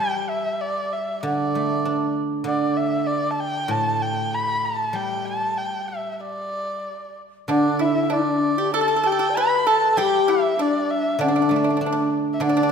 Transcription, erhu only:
0.00 0.22 G5 medium
0.22 0.31 G5 soft
0.29 0.62 E5 medium
0.61 0.94 D5 medium
0.92 1.24 E5 medium
1.24 2.12 D5 medium
2.47 2.78 D5 medium
2.76 3.08 E5 medium
3.07 3.32 D5 medium
3.30 3.41 A5 medium
3.40 3.72 G5 medium
3.71 4.03 A5 medium
4.02 4.36 G5 medium
4.34 4.67 B5 medium
4.65 4.97 A5 medium
4.95 5.27 G5 medium
5.25 5.59 A5 medium
5.58 5.89 G5 medium
5.88 6.12 E5 medium
6.12 6.22 E5 soft
6.21 7.18 D5 medium
7.50 7.82 D5 medium
7.81 8.14 E5 medium
8.13 8.74 D5 medium
8.75 9.08 A5 medium
9.07 9.38 G5 medium
9.36 9.68 B5 loud
9.67 9.99 A5 medium
9.97 10.31 G5 medium
10.30 10.62 E5 medium
10.61 10.92 D5 medium
10.90 11.22 E5 medium
11.20 12.11 D5 medium
12.33 12.43 E5 medium
12.41 12.72 D5 medium

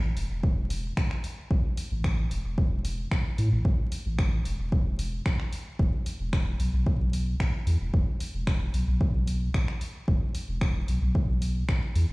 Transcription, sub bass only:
0.00 0.12 A1 loud
0.17 0.27 E1 medium
0.30 0.92 E1 loud
1.51 1.61 A1 loud
1.91 2.26 A1 loud
2.31 2.42 E1 medium
2.45 3.07 E1 loud
3.38 3.49 A2 loud
3.52 3.62 A1 loud
3.65 3.76 A1 loud
4.06 4.41 A1 loud
4.45 4.56 E1 medium
4.59 5.21 E1 loud
5.79 5.90 E1 loud
6.20 6.55 E1 loud
6.60 6.70 B1 medium
6.74 7.35 B1 loud
7.67 7.77 E2 loud
7.81 7.91 E1 loud
7.94 8.04 E1 loud
8.34 8.69 E1 loud
8.74 8.85 B1 medium
8.88 9.50 B1 loud
10.08 10.19 E1 loud
10.49 10.83 E1 loud
10.88 10.99 B1 medium
11.02 11.64 B1 loud
11.95 12.06 E2 loud
12.09 12.13 E1 loud

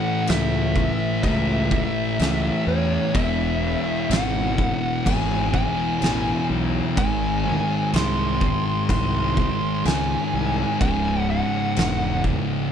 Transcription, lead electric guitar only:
0.00 0.25 F#5 loud
0.29 1.23 E5 loud
1.24 2.63 E5 loud
2.68 3.15 C#5 medium
3.15 4.14 E5 loud
4.12 5.07 F#5 loud
5.07 5.51 G#5 loud
5.55 6.46 G#5 medium
6.98 7.90 G#5 loud
7.95 8.90 C6 loud
8.91 9.89 C6 loud
9.86 10.80 G#5 loud
10.81 11.30 G#5 loud
11.30 12.21 F#5 medium

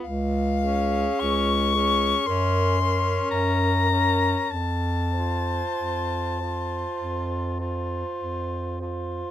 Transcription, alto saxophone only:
0.62 1.72 G#4 medium
1.75 2.25 G#4 medium
2.26 2.77 A#4 medium
2.78 3.86 A#4 medium
3.89 4.49 A#4 medium
5.13 6.36 C5 medium
6.40 7.56 C5 medium
7.60 8.77 C5 medium
8.80 9.31 C5 medium

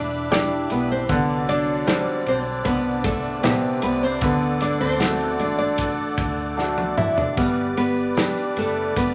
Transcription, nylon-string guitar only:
0.00 0.29 D4 medium
0.00 0.30 D5 medium
0.32 0.68 D4 medium
0.32 0.68 D5 loud
0.71 0.89 B3 medium
0.71 0.91 B4 medium
0.91 1.09 C4 medium
0.91 1.11 C5 medium
1.11 1.47 B3 medium
1.11 1.49 B4 loud
1.49 2.23 D4 medium
1.49 2.23 D5 loud
2.28 2.39 C4 medium
2.28 2.38 C5 medium
2.65 3.02 B3 medium
2.65 3.01 B4 loud
3.04 3.41 A3 medium
3.04 3.41 A4 medium
3.43 3.80 B3 medium
3.43 3.80 B4 medium
3.83 4.01 B3 medium
3.83 4.03 B4 medium
4.03 4.21 C4 medium
4.03 4.23 C5 medium
4.23 4.59 B3 medium
4.23 4.59 B4 loud
4.62 4.80 D4 medium
4.62 4.80 D5 medium
4.81 5.35 C4 medium
4.81 5.40 C5 medium
5.40 5.58 D4 medium
5.40 5.57 D5 medium
5.58 6.74 D4 medium
5.58 6.73 D5 medium
6.98 7.16 E4 medium
6.98 7.17 E5 medium
7.17 7.36 D4 medium
7.17 7.37 D5 medium
7.37 7.74 B3 medium
7.37 7.76 B4 loud
7.77 8.53 B3 medium
7.77 8.59 B4 medium
8.58 8.94 A3 medium
8.58 8.94 A4 medium
8.97 9.14 B3 medium
8.97 9.14 B4 medium

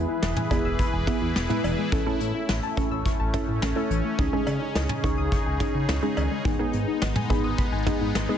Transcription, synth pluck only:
0.00 0.33 B3 medium
0.00 0.33 E4 medium
0.00 0.33 G#4 loud
0.51 0.93 B3 medium
0.51 0.93 E4 medium
0.51 0.93 G#4 medium
1.07 1.39 B3 medium
1.07 1.39 E4 medium
1.07 1.39 G#4 loud
1.49 1.81 B3 medium
1.49 1.81 E4 medium
1.49 1.81 B4 medium
1.92 2.03 C#4 medium
1.92 2.03 E4 medium
1.92 2.03 A4 medium
2.06 2.59 C#4 medium
2.06 2.59 E4 medium
2.06 2.59 A4 loud
2.77 3.19 C#4 medium
2.77 3.19 E4 medium
2.77 3.19 A4 loud
3.34 3.65 C#4 medium
3.34 3.65 E4 medium
3.34 3.65 A4 loud
3.76 4.08 C#4 medium
3.76 4.08 E4 medium
3.76 4.08 A4 loud
4.19 4.29 C#4 medium
4.19 4.29 D#4 medium
4.19 4.29 G#4 loud
4.33 4.86 C#4 medium
4.33 4.86 D#4 medium
4.33 4.86 G#4 loud
5.04 5.46 C#4 medium
5.04 5.46 D#4 medium
5.04 5.46 G#4 loud
5.60 5.92 C#4 medium
5.60 5.92 D#4 medium
5.60 5.92 G#4 loud
6.03 6.34 C#4 medium
6.03 6.34 D#4 medium
6.03 6.34 G#4 medium
6.45 6.56 B3 medium
6.45 6.56 D#4 medium
6.45 6.56 G#4 loud
6.59 7.12 B3 medium
6.59 7.12 D#4 medium
6.59 7.12 G#4 loud
7.30 7.72 B3 medium
7.30 7.72 D#4 medium
7.30 7.72 G#4 loud
7.86 8.18 B3 medium
7.86 8.18 D#4 medium
7.86 8.18 G#4 loud
8.29 8.38 B3 medium
8.29 8.38 D#4 medium
8.29 8.38 G#4 loud

